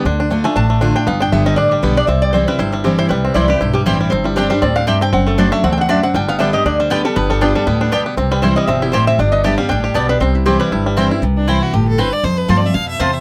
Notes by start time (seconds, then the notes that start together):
Already playing: D4
0.05 D2 D3 D4
0.20 D4
0.30 D3 A3 D4 F4
0.44 A3 D4 F4 G#5
0.56 A1 A2 D4 A5
0.70 A3
0.81 D3 A3 D4 F4
0.96 D4 F4 G5
1.07 G1 G2 B3 F5
1.20 D4 G5
1.32 G1 D3 G3 B3 G4 E5
1.46 G3 D#5
1.56 A1 D3 D4 D5
1.71 G3 G4
1.82 B1 D3 G3 B3 G4 B4
1.96 D4 G4 D5
2.07 C2 C3 C4 E5
2.22 D5
2.33 E3 G3 C4 E4 C5
2.48 G3 C4 E4 B4
2.59 G1 G2 E4 C5
2.72 G3 E4
2.84 E3 G3 C4 E4 G4
2.98 E4 C5
3.09 C2 C3 G3 B4
3.25 C4
3.34 C2 E3 G3 C4 E4 C5 D5 G5
3.48 C4 E4 G4 B4
3.59 B1 G2 E4 C5
3.73 G3 G4
3.86 A1 E3 G3 C4 E4 G4 C5 G5
4.01 G3
4.10 G1 G2 C4 C5
4.24 G3 E4
4.36 G3 C4 D4 G4 D5 G5
4.50 G3 D4 G4 C5
4.62 D2 A2 C4 D5
4.76 D4 F5
4.87 G2 C4 G4 D5 E5 G5
5.01 C4 G5
5.13 F#1 F#2 C4 F#5
5.27 A3 A4
5.38 F#3 A3 C4 D4 F#4 C5 D5 A5
5.52 A3 E5
5.64 D2 E2 C4 F#5
5.72 G5
5.78 D4 F#5
5.89 F#2 C4 D4 F#4 D5 E5 A5
6.03 C4 F#5
6.14 G1 G2 G3 G5
6.28 B3 F5
6.39 D3 G3 B3 D4 G4 D5 E5 G5
6.53 B3 G4 D#5
6.65 D2 D3 D4 D5
6.80 G3 C5
6.90 D3 G3 B3 G4 B4 D5 G5
7.04 G3 B3 G4 A4
7.16 G1 G2 B3 B4
7.30 G3 A4
7.41 D3 G3 B3 D4 F4 G4 D5 G5
7.55 G3 B3 G4 A4
7.66 D2 A2 B3 B4
7.81 D4
7.92 B2 B3 G4 D5 G5
8.06 B3
8.17 C2 C3 C4
8.31 G3 B4
8.42 E3 G3 C4 E4 C5 G5
8.56 G3 D#5
8.67 G1 B2 C4 E5
8.82 E4 G4
8.92 A2 C4 E4 G4 C5 G5
9.07 C4 E5
9.19 G1 G2 D4 D5
9.32 B3 D#5
9.44 D3 G3 B3 G4 D5 E5 A5
9.58 G3 B3 G4 F5
9.69 A1 A2 D4 G5
9.84 G4
9.94 B1 B2 B3 G4 D5 A5
10.09 D4 B4
10.20 C2 C3 C4 C5
10.35 E4
10.46 E3 G3 C4 E4 G4 C5 G5
10.60 G3 B4
10.72 G1 G2 E4
10.86 G3
10.97 E3 G3 C4 E4 C5 G5
11.11 C4 E4
11.22 C2 C3
11.37 D4
11.48 E3 G3 C4 E4 C5 G5
11.63 F#4
11.73 G1 A2 G4
11.88 A4
11.98 G2 C4 E4 B4 C5 G5
12.13 D5
12.23 F2 C5
12.38 B4
12.48 G2 F3 A3 C4 F4 C5 A5
12.57 D5
12.62 C4 F4 E5
12.74 F2 B2 F5
12.88 E5
13.00 E2 C3 C4 F4 C5 A5
13.13 E5